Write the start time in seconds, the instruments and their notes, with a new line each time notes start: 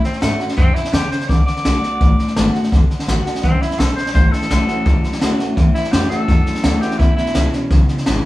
Already playing: steel-string acoustic guitar A2
0.04 tenor saxophone C4, muted upright bass stroke, snare
0.13 snare
0.21 upright bass G#2, steel-string acoustic guitar E3 A3 C#4 F#4, tenor saxophone A3, snare, hi-hat pedal
0.39 steel-string acoustic guitar C#4 F#4, snare
0.49 snare
0.57 upright bass F#2, steel-string acoustic guitar B2, tenor saxophone C4, kick, snare
0.75 tenor saxophone E4, snare
0.85 snare
0.93 upright bass E2, steel-string acoustic guitar C#3, tenor saxophone G4, snare, hi-hat pedal
1.11 tenor saxophone C5, muted upright bass stroke, snare
1.21 snare
1.29 upright bass D2, steel-string acoustic guitar D3, tenor saxophone D5, kick, snare
1.46 tenor saxophone D5, muted upright bass stroke, snare
1.57 snare
1.64 upright bass B1, steel-string acoustic guitar D3 A3 B3 F#4, snare, hi-hat pedal
1.83 steel-string acoustic guitar B3 F#4, muted upright bass stroke, snare
2.01 upright bass A1, steel-string acoustic guitar A2, kick, snare
2.19 snare
2.28 snare
2.36 upright bass G#1, steel-string acoustic guitar D3 A3 B3 F#4, snare, hi-hat pedal
2.54 steel-string acoustic guitar B3 F#4, snare
2.64 snare
2.72 upright bass F#1, steel-string acoustic guitar D3, kick, snare
2.89 muted upright bass stroke, snare
2.99 snare
3.07 upright bass A1, steel-string acoustic guitar D3 A3 B3 F#4, snare, hi-hat pedal
3.25 steel-string acoustic guitar B3 F#4, muted upright bass stroke, snare
3.35 snare
3.43 upright bass C#2, steel-string acoustic guitar F#2, tenor saxophone C4, kick, snare
3.61 tenor saxophone E4, muted upright bass stroke, snare
3.71 snare
3.78 upright bass B1, steel-string acoustic guitar B2, tenor saxophone A4, snare, hi-hat pedal
3.96 tenor saxophone C5, snare
4.06 snare
4.14 upright bass A1, clean electric guitar A2 E3, steel-string acoustic guitar A2, tenor saxophone C5, kick, snare
4.32 tenor saxophone A4, snare
4.42 snare
4.49 upright bass B1, clean electric guitar A2 E3, steel-string acoustic guitar E3 A3 C#4 F#4, snare, hi-hat pedal
4.67 clean electric guitar A2 E3, steel-string acoustic guitar C#4 F#4, snare
4.85 upright bass C#2, steel-string acoustic guitar E2, clean electric guitar A2 F#3, kick, snare
5.04 snare
5.12 snare
5.21 upright bass D2, clean electric guitar A2 E3, steel-string acoustic guitar E3 A3 C#4 F#4, snare, hi-hat pedal
5.39 clean electric guitar A2 E3, steel-string acoustic guitar C#4 F#4, muted upright bass stroke, snare
5.56 upright bass E2, clean electric guitar A2 E3, steel-string acoustic guitar A2, kick, snare
5.74 tenor saxophone E4, snare
5.84 snare
5.92 upright bass F2, clean electric guitar A2 E3, steel-string acoustic guitar E3 A3 C#4 F#4, tenor saxophone G4, snare, hi-hat pedal
6.10 clean electric guitar A2 E3, steel-string acoustic guitar C#4 F#4, tenor saxophone A4, muted upright bass stroke, snare
6.28 upright bass F#2, clean electric guitar A2 F#3, kick, snare
6.46 snare
6.55 snare
6.63 upright bass D2, clean electric guitar A2 E3, steel-string acoustic guitar E3 A3 C#4 F#4, snare, hi-hat pedal
6.81 clean electric guitar A2 E3, steel-string acoustic guitar C#4 F#4, tenor saxophone G4, muted upright bass stroke, snare
6.91 snare
6.98 clean electric guitar E2 B2, upright bass E2, steel-string acoustic guitar E2, tenor saxophone E4, kick, snare
7.16 tenor saxophone E4, muted upright bass stroke, snare
7.26 snare
7.34 upright bass C#2, clean electric guitar E2 B2, steel-string acoustic guitar E3 G#3 C#4 E4, snare, hi-hat pedal
7.52 clean electric guitar E2 B2, steel-string acoustic guitar C#4 E4, muted upright bass stroke, snare
7.71 upright bass B1, clean electric guitar E2 C#3, steel-string acoustic guitar B2, kick, snare
7.88 snare
7.98 snare
8.06 upright bass G#1, clean electric guitar E2 B2, steel-string acoustic guitar E3 G#3 C#4 E4, snare, hi-hat pedal